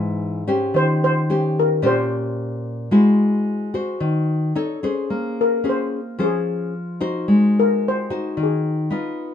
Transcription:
Already playing: G#2 E3 B3 D#4
0.47 C#4 G4 C5
0.74 D#3 C5
1.04 C5
1.30 C#4 G4 C5
1.59 A#4
1.82 A#2 C#4 G4 C5
1.87 C5
2.91 G#3 E4 F#4 C5
3.74 F#4 C5
4.00 D#3
4.55 D#4 A4 C#5
4.83 C#4 G#4 C5
5.10 A#3
5.41 A#4
5.64 C#4 G#4 C5
5.69 C5
6.19 F3 C#4 G#4 C5
6.23 G#4
7.00 D#4 F#4 C5
7.28 G#3
7.59 A#4
7.88 C5
8.10 D#4 F#4 C5
8.37 D#3
8.43 G#4
8.90 B3 D#4 F4

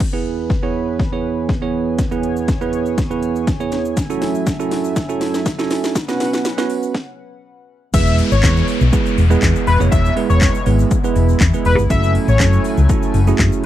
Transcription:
0.00 E2 E3 B3 B4 G#5, kick, snare, crash
0.13 B3 E4 G#4 B4
0.50 kick, snare
0.63 B3 E4 G#4 C#5
0.99 kick, snare
1.12 B3 E4 G#4 C#5
1.49 kick, snare
1.62 B3 E4 G#4 C#5
1.98 C#5, kick, snare, closed hi-hat, shaker
2.11 B3 E4 G#4 B4, shaker
2.23 closed hi-hat, shaker
2.37 shaker
2.48 kick, snare, closed hi-hat, shaker
2.61 B3 E4 G#4 B4, shaker
2.73 closed hi-hat, shaker
2.86 shaker
2.98 kick, snare, closed hi-hat, shaker
3.10 B3 E4 G#4 B4, shaker
3.23 closed hi-hat, shaker
3.36 shaker
3.47 kick, snare, closed hi-hat, shaker
3.60 B3 E4 G#4 C#5, shaker
3.72 snare, closed hi-hat, shaker
3.85 shaker
3.97 F#2 F#3 A3 E5, kick, snare, closed hi-hat, shaker
4.10 C#4 E4 F#4 A4, shaker
4.22 snare, open hi-hat, shaker
4.35 shaker
4.46 kick, snare, closed hi-hat, shaker
4.59 C#4 E4 F#4 A4, shaker
4.71 snare, open hi-hat, shaker
4.84 shaker
4.96 kick, snare, closed hi-hat, shaker
5.09 C#4 E4 F#4 A4, shaker
5.21 snare, open hi-hat, shaker
5.34 snare, shaker
5.46 kick, snare, closed hi-hat, shaker
5.58 C#4 E4 F#4 A4, snare, shaker
5.71 snare, open hi-hat, shaker
5.84 snare, shaker
5.95 B2 C#4 B4 F#5, kick, snare, closed hi-hat, shaker
6.08 B3 C#4 F#4 B4, snare, shaker
6.20 snare, open hi-hat, shaker
6.33 snare, shaker
6.45 snare, closed hi-hat, shaker
6.58 B3 C#4 F#4 B4, snare, shaker
6.70 open hi-hat, shaker
6.83 shaker
6.94 kick, snare
7.94 E1 G#3 B3 E4 G#4 B4 E5, kick, closed hi-hat, crash, downlifter, shaker
8.07 shaker
8.18 open hi-hat, shaker
8.32 G#1 C#5, shaker
8.43 E2 G#3 B3 E4 G#4 B4, kick, snare, clap, closed hi-hat, shaker
8.56 shaker
8.68 open hi-hat, shaker
8.81 B1, shaker
8.92 G#3 B3 E4 G#4 B4, kick, closed hi-hat, shaker
9.06 shaker
9.18 E1, open hi-hat, shaker
9.30 G#3 B3 E4 G#4 B4, shaker
9.42 E2, kick, snare, clap, closed hi-hat, shaker
9.56 shaker
9.67 E1 B4, open hi-hat, shaker
9.80 F1 G#3 B3 E4 G#4 C#5, shaker
9.91 E1 E5, kick, closed hi-hat, shaker
10.05 shaker
10.16 G#3 B3 E4 G#4 B4, open hi-hat, shaker
10.30 E1 C#5, shaker
10.41 kick, snare, clap, closed hi-hat, shaker
10.54 shaker
10.66 G#1 G#3 B3 E4 G#4 B4, open hi-hat, shaker
10.79 shaker
10.91 kick, closed hi-hat, shaker
11.04 G#3 B3 E4 G#4 B4, shaker
11.16 E1, open hi-hat, shaker
11.29 shaker
11.40 E2, kick, snare, clap, closed hi-hat, shaker
11.54 G#3 B3 E4 G#4 B4, shaker
11.65 E1 B4, open hi-hat, shaker
11.78 G1, shaker
11.90 F#1 F#3 A3 C#4 E4 F#4 A4 E5 G#5, kick, closed hi-hat, shaker
12.03 shaker
12.15 open hi-hat, shaker
12.28 A1 C#5, shaker
12.39 F#2 A3 C#4 E4 F#4 A4, kick, snare, clap, closed hi-hat, shaker
12.53 shaker
12.64 open hi-hat, shaker
12.77 C#2, shaker
12.89 A3 C#4 E4 F#4 A4, kick, closed hi-hat, shaker
13.02 shaker
13.14 F#1, open hi-hat, shaker
13.27 A3 C#4 E4 F#4 G#4, shaker
13.39 F#2, kick, snare, clap, closed hi-hat, shaker
13.52 shaker

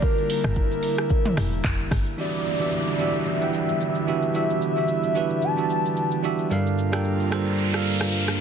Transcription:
Already playing: D3 G3 A#3
0.02 E4 A#4, kick, shaker
0.18 shaker
0.30 open hi-hat, shaker
0.44 G1, cross-stick, shaker
0.56 kick, shaker
0.71 shaker
0.83 open hi-hat, shaker
0.98 cross-stick, shaker
1.10 kick, shaker
1.25 mid tom, shaker
1.37 F1, cross-stick, open hi-hat, shaker
1.53 shaker
1.64 F1, kick, clap, shaker
1.79 shaker
1.91 G1, kick, cross-stick, open hi-hat, shaker
2.06 shaker
2.17 D3 E3 G3 B3 D4 E4 F#4 G4 D5 E5, downlifter, shaker
2.34 shaker
2.46 shaker
2.59 E3 D4 F#4 G4 E5, shaker
2.72 shaker
2.87 shaker
2.98 E3 D4 F#4 G4 E5, shaker
3.14 shaker
3.26 E5, shaker
3.40 E3 D4 G4 F#5 G5, shaker
3.54 shaker
3.69 shaker
3.80 shaker
3.95 shaker
4.07 E3 D4 F#4 G4 E5, shaker
4.23 shaker
4.34 E3 D4 F#4 G4 E5, shaker
4.50 shaker
4.62 shaker
4.75 E3 D4 F#4 G4 E5, shaker
4.88 shaker
5.04 shaker
5.14 E3 D4 F#4 G4 B4, shaker
5.30 shaker
5.42 A5, shaker
5.56 E3 D4 F#4 G4 E5, shaker
5.70 shaker
5.85 shaker
5.97 shaker
6.11 shaker
6.22 E3 D4 F#4 G4 E5, shaker
6.39 shaker
6.50 G2 G3 A#3 D4 F4 A4 A#4 F5, noise sweep, shaker
6.67 shaker
6.78 shaker
6.92 G3 D4 A4 A#4 G5, cross-stick, shaker
7.05 shaker
7.20 shaker
7.31 G3 D4 A4 A#4 C5, cross-stick, shaker
7.47 shaker
7.58 shaker
7.73 G3 D4 A4 A#4 F5, cross-stick, shaker
7.86 shaker
8.01 cross-stick, shaker
8.13 shaker
8.28 cross-stick, shaker

